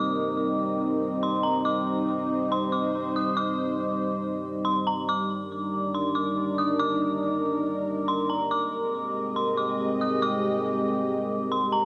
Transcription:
Already playing: analog synth pad G3 C4 D#4 A#4 D#5, synth bell D6
1.23 synth bell C6
1.43 synth bell A#5
1.65 analog synth pad C5, synth bell D6
2.52 synth bell C6
2.72 synth bell D6
3.16 synth bell D#6
3.37 synth bell D6
4.65 synth bell C6
4.87 synth bell A#5
5.08 analog synth pad D4 D#4 A#4 D5, synth bell D6
5.95 synth bell C6
6.15 synth bell D6
6.58 synth bell D#6
6.79 synth bell D6
8.08 synth bell C6
8.30 synth bell A#5
8.51 analog synth pad G#3 C4 G4 D#5, synth bell D6
9.36 synth bell C6
9.57 synth bell D6
10.01 synth bell D#6
10.22 synth bell D6
11.52 synth bell C6
11.72 synth bell A#5

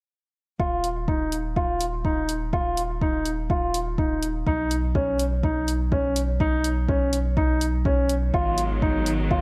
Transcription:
0.60 sub bass D#1, grand piano F4, kick
0.84 closed hi-hat
1.08 grand piano D#4, kick
1.32 closed hi-hat
1.56 grand piano F4, kick
1.81 closed hi-hat
2.05 grand piano D#4, kick
2.29 closed hi-hat
2.53 grand piano F4, kick
2.77 closed hi-hat
3.01 grand piano D#4, kick
3.25 closed hi-hat
3.50 grand piano F4, kick
3.74 closed hi-hat
3.98 grand piano D#4, kick
4.23 closed hi-hat
4.47 sub bass B1, grand piano D#4, kick
4.71 closed hi-hat
4.95 grand piano C#4, kick
5.19 closed hi-hat
5.43 grand piano D#4, kick
5.68 closed hi-hat
5.92 grand piano C#4, kick
6.16 closed hi-hat
6.40 grand piano D#4, kick
6.64 closed hi-hat
6.88 grand piano C#4, kick
7.13 closed hi-hat
7.37 grand piano D#4, kick
7.61 closed hi-hat
7.85 grand piano C#4, kick
8.09 closed hi-hat
8.34 sub bass G#1, string section D#3 F#3 G#3 B3, grand piano F4, kick
8.58 closed hi-hat
8.82 grand piano D#4, kick
9.06 closed hi-hat
9.31 grand piano F4, kick

